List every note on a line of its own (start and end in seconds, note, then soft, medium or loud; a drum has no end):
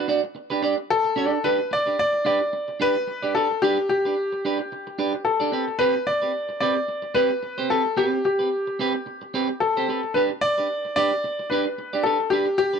0.08 0.20 D4 medium
0.08 0.20 F#4 medium
0.08 0.20 D5 medium
0.24 muted clean electric guitar stroke medium
0.35 muted clean electric guitar stroke soft
0.50 0.61 D4 medium
0.50 0.61 G4 medium
0.50 0.62 B4 medium
0.62 0.74 D4 medium
0.62 0.74 G4 medium
0.62 0.75 D5 medium
0.78 muted clean electric guitar stroke soft
0.90 1.46 A4 loud
1.05 muted clean electric guitar stroke medium
1.16 1.37 D4 medium
1.16 1.32 G4 medium
1.16 1.32 D5 loud
1.32 muted clean electric guitar stroke soft
1.44 1.59 D4 medium
1.44 1.58 G4 medium
1.44 1.72 B4 loud
1.44 1.57 B4 medium
1.59 muted clean electric guitar stroke soft
1.71 1.98 D5 medium
1.71 muted clean electric guitar stroke soft
1.86 1.96 D4 soft
1.86 1.96 G4 soft
1.86 1.95 B4 soft
1.99 2.24 D5 medium
2.13 muted clean electric guitar stroke soft
2.25 2.40 D4 medium
2.25 2.40 G4 medium
2.25 2.39 B4 medium
2.25 2.77 D5 medium
2.40 muted clean electric guitar stroke soft
2.53 muted clean electric guitar stroke soft
2.68 muted clean electric guitar stroke soft
2.80 2.95 D4 medium
2.80 2.95 G4 medium
2.80 2.94 B4 medium
2.80 3.32 B4 loud
2.96 muted clean electric guitar stroke medium
3.07 muted clean electric guitar stroke soft
3.22 3.34 D4 medium
3.22 3.35 G4 medium
3.22 3.34 D5 medium
3.35 3.47 D4 medium
3.35 3.47 G4 medium
3.35 3.63 A4 medium
3.35 3.47 B4 medium
3.51 muted clean electric guitar stroke soft
3.62 3.77 D4 loud
3.62 3.88 G4 medium
3.62 3.78 G4 medium
3.62 3.78 B4 loud
3.79 muted clean electric guitar stroke soft
3.89 5.29 G4 medium
3.89 muted clean electric guitar stroke soft
4.05 4.15 D4 medium
4.05 4.14 G4 medium
4.05 4.14 B4 soft
4.33 muted clean electric guitar stroke soft
4.45 4.59 D4 medium
4.45 4.59 G4 medium
4.45 4.58 B4 medium
4.59 muted clean electric guitar stroke medium
4.72 muted clean electric guitar stroke soft
4.87 muted clean electric guitar stroke soft
4.98 5.13 D4 medium
4.98 5.13 G4 medium
4.98 5.13 B4 medium
5.14 muted clean electric guitar stroke medium
5.25 5.81 A4 medium
5.25 muted clean electric guitar stroke soft
5.40 5.52 D4 medium
5.40 5.52 G4 medium
5.40 5.52 D5 medium
5.52 5.64 C4 medium
5.52 5.64 G4 medium
5.52 5.64 B4 medium
5.68 muted clean electric guitar stroke soft
5.79 5.94 C4 medium
5.79 5.95 G4 medium
5.79 6.07 B4 loud
5.79 5.94 B4 medium
5.95 muted clean electric guitar stroke soft
6.07 6.59 D5 medium
6.07 muted clean electric guitar stroke soft
6.22 6.32 C4 soft
6.22 6.31 G4 soft
6.22 6.31 B4 medium
6.49 muted clean electric guitar stroke soft
6.60 6.76 C4 medium
6.60 6.76 G4 medium
6.60 6.74 B4 medium
6.60 7.17 D5 medium
6.76 muted clean electric guitar stroke medium
6.88 muted clean electric guitar stroke soft
7.02 muted clean electric guitar stroke medium
7.15 7.30 C4 medium
7.15 7.30 G4 loud
7.15 7.71 B4 loud
7.15 7.30 B4 loud
7.31 muted clean electric guitar stroke soft
7.43 muted clean electric guitar stroke soft
7.58 7.69 C4 medium
7.58 7.69 G4 medium
7.58 7.70 C5 medium
7.70 7.81 C4 medium
7.70 7.82 G4 medium
7.70 7.98 A4 medium
7.70 7.82 B4 medium
7.85 muted clean electric guitar stroke soft
7.97 8.18 C4 medium
7.97 8.24 G4 medium
7.97 8.12 G4 medium
7.97 8.11 B4 medium
8.12 muted clean electric guitar stroke soft
8.25 9.65 G4 medium
8.25 muted clean electric guitar stroke soft
8.39 8.49 C4 soft
8.39 8.49 G4 soft
8.39 8.48 B4 medium
8.67 muted clean electric guitar stroke soft
8.79 8.94 C4 medium
8.79 8.94 G4 medium
8.79 8.93 B4 loud
8.94 muted clean electric guitar stroke soft
9.06 muted clean electric guitar stroke soft
9.22 muted clean electric guitar stroke soft
9.34 9.48 C4 medium
9.34 9.49 G4 loud
9.34 9.48 B4 medium
9.49 muted clean electric guitar stroke soft
9.60 10.16 A4 medium
9.60 muted clean electric guitar stroke soft
9.77 9.87 C4 medium
9.77 9.88 G4 medium
9.77 9.88 C5 medium
9.89 10.00 C4 soft
9.89 10.00 G4 medium
9.89 10.00 B4 medium
10.03 muted clean electric guitar stroke soft
10.14 10.30 D4 medium
10.14 10.30 G4 medium
10.14 10.20 B4 medium
10.14 10.29 B4 medium
10.31 muted clean electric guitar stroke soft
10.41 10.94 D5 loud
10.41 muted clean electric guitar stroke soft
10.58 10.67 D4 soft
10.58 10.67 G4 soft
10.58 10.67 B4 soft
10.85 muted clean electric guitar stroke soft
10.96 11.11 D4 medium
10.96 11.12 G4 medium
10.96 11.11 B4 loud
10.96 11.52 D5 loud
11.13 muted clean electric guitar stroke soft
11.24 muted clean electric guitar stroke soft
11.39 muted clean electric guitar stroke medium
11.50 11.66 D4 loud
11.50 11.65 G4 medium
11.50 12.06 B4 medium
11.50 11.65 B4 loud
11.66 muted clean electric guitar stroke soft
11.78 muted clean electric guitar stroke soft
11.93 12.04 D4 medium
11.93 12.05 G4 medium
11.93 12.05 D5 medium
12.03 12.17 D4 medium
12.03 12.17 G4 medium
12.03 12.32 A4 medium
12.03 12.17 B4 medium
12.20 muted clean electric guitar stroke soft
12.30 12.47 D4 medium
12.30 12.57 G4 medium
12.30 12.47 G4 medium
12.30 12.45 B4 medium
12.47 muted clean electric guitar stroke medium
12.58 12.80 G4 loud
12.58 muted clean electric guitar stroke soft
12.73 12.80 D4 soft
12.73 12.80 G4 soft
12.73 12.80 B4 soft